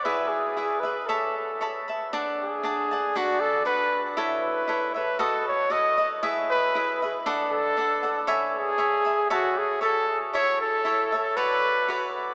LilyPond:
<<
  \new Staff \with { instrumentName = "Cavaquinho" } { \time 2/4 \key a \major \tempo 4 = 117 <e' gis' b' e''>4 <e' gis' b' e''>8 <gis' b' e''>8 | <cis'' e'' a'' b''>4 <cis'' e'' a'' b''>8 <e'' a'' b''>8 | <d' d'' fis'' a''>4 <d' d'' fis'' a''>8 <d'' fis'' a''>8 | <d' b' d'' fis''>4 <d' b' d'' fis''>4 |
<e' a' cis'' e''>4 <e' a' cis'' e''>8 <a' cis'' e''>8 | <fis' a' b' dis''>4 <fis' a' b' dis''>8 <a' b' dis''>8 | <e' gis' b' e''>4 <e' gis' b' e''>8 <gis' b' e''>8 | <d' a' d'' fis''>4 <d' a' d'' fis''>8 <a' d'' fis''>8 |
<cis'' e'' gis'' b''>4 <cis'' e'' gis'' b''>8 <e'' gis'' b''>8 | <cis'' e'' a'' b''>4 <cis'' e'' a'' b''>4 | <e' a' cis'' e''>4 <e' a' cis'' e''>8 <a' cis'' e''>8 | <fis' b' cis'' d''>4 <fis' b' cis'' d''>4 | }
  \new Staff \with { instrumentName = "Trumpet" } { \time 2/4 \key a \major b'8 gis'4 b'8 | a'4. r8 | r8 gis'4. | fis'8 a'8 b'8. r16 |
r8 b'4 b'8 | a'8 cis''8 dis''8. r16 | r8 b'4. | r8 a'4. |
r8 gis'4. | fis'8 gis'8 a'8. r16 | cis''8 a'8~ \tuplet 3/2 { a'4 a'8 } | b'4. r8 | }
>>